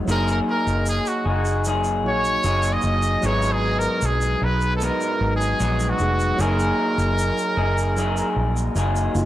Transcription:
0.05 fingered electric bass F#1, tine electric piano F#3 A#3 D#4, clean electric guitar F#3 A#3 D#4, shaker
0.09 clean electric guitar G#4, tine electric piano G#4, trumpet A#4
0.28 trumpet A#4, shaker
0.50 trumpet A#4
0.67 fingered electric bass F#1, shaker
0.86 trumpet G#4, shaker
1.06 trumpet F#4, shaker
1.25 fingered electric bass F#1, clean electric guitar A#3 D#4 G#4, trumpet F#4
1.45 shaker
1.65 clean electric guitar F#3 A#3 D#4 G#4, shaker
1.84 shaker
2.03 fingered electric bass A#1, tine electric piano F#3 A#3 D#4 F#4
2.07 trumpet C#5
2.25 shaker
2.44 fingered electric bass F#1, clean electric guitar F#3 A#3 D#4 G#4, shaker
2.63 shaker
2.73 trumpet D#5
2.82 fingered electric bass F#1, shaker
3.02 shaker
3.21 fingered electric bass G#1, clean electric guitar G#2 F#3 B3 D#4, tine electric piano F#3 B3 D#4, shaker
3.26 tine electric piano G#4, trumpet C#5
3.42 shaker
3.52 trumpet G#4
3.79 trumpet A#4, shaker
4.01 fingered electric bass B1, trumpet G#4, shaker
4.21 shaker
4.41 fingered electric bass B1, clean electric guitar F#3 B3 D#4, trumpet B4
4.61 shaker
4.76 trumpet A4
4.80 clean electric guitar G#2 F#3 B3 D#4, trumpet A#4, shaker
5.01 shaker
5.21 fingered electric bass G#1
5.36 trumpet G#4
5.41 shaker
5.59 fingered electric bass A#1, clean electric guitar G#2 F#3 B3 D#4, shaker
5.80 shaker
5.89 trumpet F#4
5.99 fingered electric bass F1, tine electric piano F#3 B3 D#4 G#4, shaker
6.20 shaker
6.37 fingered electric bass F#1, tine electric piano F#3 A#3 D#4, clean electric guitar F#3 A#3 D#4, shaker
6.41 clean electric guitar G#4, tine electric piano G#4, trumpet A#4
6.59 shaker
6.98 fingered electric bass F#1, shaker
7.19 shaker
7.38 shaker
7.57 fingered electric bass F#1, clean electric guitar A#3 D#4 G#4
7.78 shaker
7.97 clean electric guitar F#3 A#3 D#4 G#4, shaker
8.17 shaker
8.36 fingered electric bass A#1
8.56 shaker
8.76 fingered electric bass F#1, clean electric guitar F#3 A#3 D#4 G#4, shaker
8.96 shaker
9.14 fingered electric bass F#1, tine electric piano F#3 A#3 D#4 F4, shaker

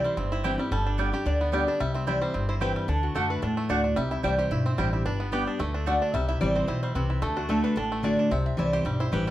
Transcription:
Already playing: steel-string acoustic guitar C3 E3 G3 C4 E4, five-string banjo C4 E4
0.04 five-string banjo G3, resonator guitar played with a steel bar C5
0.17 upright bass G1, steel-string acoustic guitar G2, five-string banjo C4
0.32 five-string banjo E4, resonator guitar played with a steel bar C5
0.44 steel-string acoustic guitar E3 G3 C4 E4, mandolin C4 E4 C5 G5, five-string banjo G4, resonator guitar played with a steel bar B4
0.58 five-string banjo G3, steel-string acoustic guitar C4 E4
0.71 upright bass G1, steel-string acoustic guitar G2, five-string banjo G3, resonator guitar played with a steel bar A4
0.87 five-string banjo D4
0.98 steel-string acoustic guitar G3 B3 D4 G4, five-string banjo G3, mandolin B3 G4 D5 G5
1.12 steel-string acoustic guitar D4 G4, five-string banjo G4, resonator guitar played with a steel bar G4
1.26 upright bass D2, steel-string acoustic guitar D3, five-string banjo D4, resonator guitar played with a steel bar D5
1.41 five-string banjo B3
1.52 steel-string acoustic guitar G3 B3 D4 G4, five-string banjo G3, mandolin B3 G4 D5 G5, resonator guitar played with a steel bar D5
1.67 five-string banjo D4, steel-string acoustic guitar D4 G4
1.80 upright bass C2, steel-string acoustic guitar C3, five-string banjo G3, resonator guitar played with a steel bar E5
1.94 five-string banjo C4, resonator guitar played with a steel bar E5
2.07 steel-string acoustic guitar E3 G3 C4 E4, mandolin C4 E4 C5 G5, five-string banjo E4, resonator guitar played with a steel bar D5
2.21 five-string banjo G3, resonator guitar played with a steel bar C5
2.34 upright bass G1, steel-string acoustic guitar G2, five-string banjo C4
2.49 five-string banjo E4, resonator guitar played with a steel bar C5
2.60 steel-string acoustic guitar E3 G3 C4 E4, mandolin C4 E4 C5 G5, five-string banjo G4, resonator guitar played with a steel bar B4
2.76 five-string banjo G3
2.88 upright bass D2, steel-string acoustic guitar D3, five-string banjo D4, resonator guitar played with a steel bar A4
3.03 resonator guitar played with a steel bar F#4
3.14 upright bass F#2, steel-string acoustic guitar D3 A3 D4 F#4, mandolin A3 F#4 D5 F#5, five-string banjo A3, resonator guitar played with a steel bar A4
3.30 five-string banjo D4, resonator guitar played with a steel bar B4
3.42 upright bass E2, steel-string acoustic guitar A2, five-string banjo D4, resonator guitar played with a steel bar A4
3.57 five-string banjo A3
3.69 upright bass D2, steel-string acoustic guitar D3 A3 D4 F#4, mandolin A3 F#4 D5 F#5, five-string banjo D4, resonator guitar played with a steel bar D5
3.84 five-string banjo D4
3.96 upright bass C2, steel-string acoustic guitar C3, five-string banjo G3, resonator guitar played with a steel bar E5
4.11 five-string banjo E4, resonator guitar played with a steel bar E5
4.23 upright bass C2, steel-string acoustic guitar E3 G3 C4 E4, five-string banjo G3, mandolin C4 E4 C5 G5, resonator guitar played with a steel bar D5
4.38 five-string banjo G4, resonator guitar played with a steel bar C5
4.51 upright bass B1, steel-string acoustic guitar G2, five-string banjo E4
4.66 five-string banjo C4, resonator guitar played with a steel bar C5
4.77 upright bass A1, steel-string acoustic guitar E3 G3 C4 E4, five-string banjo G3, mandolin C4 E4 C5 G5, resonator guitar played with a steel bar G4
4.93 five-string banjo E4
5.05 upright bass G1, steel-string acoustic guitar G2, five-string banjo D4, resonator guitar played with a steel bar B4
5.20 five-string banjo B3
5.32 steel-string acoustic guitar G3 B3 D4 G4, mandolin B3 G4 D5 G5, five-string banjo G4, resonator guitar played with a steel bar B4
5.47 five-string banjo D4
5.59 upright bass D2, steel-string acoustic guitar D3, five-string banjo A3, resonator guitar played with a steel bar A4
5.74 five-string banjo D4
5.86 steel-string acoustic guitar D3 A3 D4 F#4, mandolin A3 F#4 D5 F#5, five-string banjo A3, resonator guitar played with a steel bar D5
6.02 five-string banjo D4
6.14 upright bass C2, steel-string acoustic guitar C3, five-string banjo G3, resonator guitar played with a steel bar E5
6.28 five-string banjo E4, resonator guitar played with a steel bar E5
6.41 upright bass A1, steel-string acoustic guitar E3 G3 C4 E4, five-string banjo G3, resonator guitar played with a steel bar D5
6.55 five-string banjo C4, resonator guitar played with a steel bar C5
6.67 upright bass B1, steel-string acoustic guitar B2, five-string banjo E4, resonator guitar played with a steel bar C5
6.83 five-string banjo G3, resonator guitar played with a steel bar C5
6.95 upright bass C2, steel-string acoustic guitar C3, five-string banjo C4, resonator guitar played with a steel bar B4
7.10 five-string banjo E4
7.22 upright bass D2, steel-string acoustic guitar D3, five-string banjo A3, resonator guitar played with a steel bar A4
7.36 five-string banjo D4, resonator guitar played with a steel bar F#4
7.49 steel-string acoustic guitar D3 A3 D4 F#4, five-string banjo A3, resonator guitar played with a steel bar A4
7.64 five-string banjo D4, resonator guitar played with a steel bar B4
7.76 upright bass A1, steel-string acoustic guitar A2, five-string banjo D4, resonator guitar played with a steel bar A4
7.92 five-string banjo A3
8.03 steel-string acoustic guitar D3 A3 D4 F#4, five-string banjo D4, resonator guitar played with a steel bar D5
8.19 five-string banjo D4
8.31 upright bass C2, steel-string acoustic guitar C3, five-string banjo C4, resonator guitar played with a steel bar E5
8.46 resonator guitar played with a steel bar E5
8.57 upright bass C2, steel-string acoustic guitar E3 G3 C4 E4, five-string banjo E4, resonator guitar played with a steel bar D5
8.73 five-string banjo G4, resonator guitar played with a steel bar C5
8.85 upright bass B1, steel-string acoustic guitar G2, five-string banjo G3
9.00 five-string banjo E4, resonator guitar played with a steel bar C5
9.12 upright bass A1, steel-string acoustic guitar E3 G3 C4 E4, five-string banjo G4, resonator guitar played with a steel bar B4
9.27 five-string banjo G3

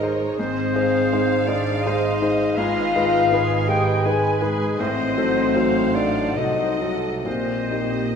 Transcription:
Already playing: double bass section G#1, cello section G#2, grand piano G#2 G#3 D#4 C5, viola section A#4, violin section D#5
0.01 grand piano G#3 D#4 C5, violin section C#5
0.37 double bass section G#1, cello section G#2, grand piano G#2, french horn section C4, viola section G#4, violin section C5 D#5, clarinet C5, flute C5
0.74 grand piano G#3 D#4 C5, violin section F5
1.12 grand piano G#3 D#4 C5, violin section C5
1.47 grand piano G#3 D#4 C5, french horn section D4, clarinet D5, flute D5
1.83 grand piano G#3 D#4, french horn section D#4, viola section C5, violin section C5, clarinet D#5, flute D#5
1.87 grand piano C5
2.22 grand piano G#3 D#4 C5, violin section D#5
2.56 double bass section G#1, cello section G#2, grand piano G#2, french horn section F4, viola section B4, violin section D#5 G#5, flute F5, clarinet F5
2.94 grand piano G#3 D#4 B4, violin section G5
3.30 grand piano G#3 D#4 B4, violin section B4 G#5, viola section D#5
3.67 grand piano G#3 D#4 B4, french horn section G4, violin section B4, flute G5, clarinet G5
4.04 grand piano G#3 D#4 B4, french horn section G#4, viola section B4, flute G#5, clarinet G#5, violin section G#5
4.41 french horn section G#3, grand piano G#3 D#4 B4, clarinet G#4, flute G#4
4.79 double bass section A1, cello section A2, grand piano A2, french horn section C4, flute C5, viola section C5, clarinet C5, violin section D#5 F#5
5.17 grand piano F#3 D#4 A4
5.54 grand piano F#3 D#4 A4, violin section F5
5.94 grand piano F#3 D#4 A4, french horn section D4, flute D5, clarinet D5
6.35 double bass section C2, cello section C3, grand piano F#3 D#4 A4, french horn section D#4, viola section C5, violin section D#5, flute D#5, clarinet D#5
6.80 grand piano F#3 D#4 A4, viola section A4
7.24 double bass section A#1, cello section A#2, grand piano A#2, french horn section C4, viola section G4, clarinet C5, flute C5, violin section D#5
7.71 grand piano A#3 D#4 G4

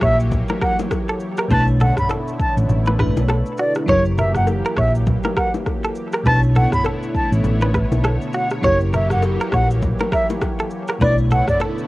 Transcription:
Already playing: analog synth pad E3 F#3 A#3 G4 C#5, fm electric piano F#3 E4 G4 A#4
0.01 fingered electric bass A#1, clean electric guitar C#5, flute E5, kick, cross-stick, shaker
0.20 shaker
0.31 kick, low conga, shaker
0.48 clean electric guitar A#4, low bongo, shaker
0.61 clean electric guitar A#4, flute F#5, kick, cross-stick, shaker
0.79 low bongo, shaker
0.91 kick, cross-stick, high bongo, shaker
1.08 clean electric guitar A4, shaker
1.20 shaker
1.37 clean electric guitar A#4, cross-stick, shaker
1.48 fingered electric bass B1, fm electric piano B2 A3 D4 E4, analog synth pad D3 A3 B3 E4, clean electric guitar B4, flute A5, kick, low conga, shaker
1.53 fm electric piano B4
1.60 fm electric piano C#5
1.68 shaker
1.80 clean electric guitar A4, flute F#5, low conga, shaker
1.97 flute B5, kick, cross-stick, mid tom, shaker
2.09 clean electric guitar A4, high bongo, shaker
2.28 shaker
2.40 flute A5, kick, shaker
2.57 fingered electric bass A1, shaker
2.69 fingered electric bass A1, low conga, shaker
2.86 clean electric guitar B4, low bongo, shaker
2.98 fm electric piano B2 A3 D4 E4 B4, clean electric guitar B4, kick, cross-stick, mid tom, shaker
3.16 fingered electric bass B1, low bongo, shaker
3.28 clean electric guitar A4, cross-stick, high bongo, shaker
3.46 shaker
3.57 clean electric guitar F#4, flute D5, shaker
3.75 cross-stick, shaker
3.86 fingered electric bass F#1, analog synth pad E3 F#3 A#3 G4, fm electric piano F#3 E4 G4, flute C#5, clean electric guitar C#5, kick, low conga, shaker
3.91 fm electric piano A#4
4.05 shaker
4.18 clean electric guitar A#4, flute E5, low conga, shaker
4.34 flute F#5, cross-stick, mid tom, shaker
4.47 high bongo, shaker
4.65 clean electric guitar A#4, shaker
4.77 fingered electric bass A#1, clean electric guitar C#5, flute E5, kick, cross-stick, shaker
4.95 shaker
5.07 kick, low conga, shaker
5.23 clean electric guitar A#4, low bongo, shaker
5.37 clean electric guitar A#4, flute F#5, kick, cross-stick, shaker
5.54 low bongo, shaker
5.66 kick, cross-stick, high bongo, shaker
5.84 clean electric guitar A4, shaker
5.95 shaker
6.12 clean electric guitar A#4, cross-stick, shaker
6.23 fingered electric bass B1, fm electric piano B2 A3 D4 E4, analog synth pad D3 A3 B3 E4 C#5, clean electric guitar B4, flute A5, kick, low conga, shaker
6.28 fm electric piano C5
6.35 fm electric piano C#5
6.43 shaker
6.55 clean electric guitar A4, flute F#5, low conga, shaker
6.72 flute B5, kick, cross-stick, mid tom, shaker
6.85 clean electric guitar A4, high bongo, shaker
7.03 shaker
7.15 flute A5, kick, shaker
7.32 fingered electric bass A1, shaker
7.44 fingered electric bass A1, low conga, shaker
7.61 clean electric guitar B4, low bongo, shaker
7.74 clean electric guitar B4, kick, cross-stick, shaker
7.92 fingered electric bass B1, low bongo, shaker
8.04 clean electric guitar A4, cross-stick, high bongo, shaker
8.22 shaker
8.33 clean electric guitar F#4, flute F#5, shaker
8.50 cross-stick, shaker
8.61 fingered electric bass F#1, analog synth pad E3 F#3 A#3 G4, fm electric piano F#3 E4 G4, clean electric guitar C#5, flute C#5, kick, low conga, shaker
8.66 fm electric piano A#4
8.81 shaker
8.93 clean electric guitar A#4, flute E5, low conga, shaker
9.10 flute F#5, cross-stick, mid tom, shaker
9.22 high bongo, shaker
9.41 clean electric guitar A#4, shaker
9.52 fingered electric bass A#1, clean electric guitar C#5, flute F#5, kick, cross-stick, shaker
9.70 shaker
9.82 kick, low conga, shaker
9.99 clean electric guitar A#4, low bongo, shaker
10.12 clean electric guitar A#4, flute E5, kick, cross-stick, shaker
10.30 low bongo, shaker
10.41 kick, cross-stick, high bongo, shaker
10.59 clean electric guitar A4, shaker
10.70 shaker
10.88 clean electric guitar A#4, cross-stick, shaker
10.99 fingered electric bass B1, fm electric piano B2 A3 D4 E4, analog synth pad D3 A3 B3 E4, clean electric guitar B4, flute D5, kick, low conga, shaker
11.04 fm electric piano C#5
11.18 shaker
11.31 clean electric guitar A4, flute F#5, low conga, shaker
11.47 flute D5, kick, cross-stick, mid tom, shaker
11.60 clean electric guitar A4, high bongo, shaker
11.78 shaker

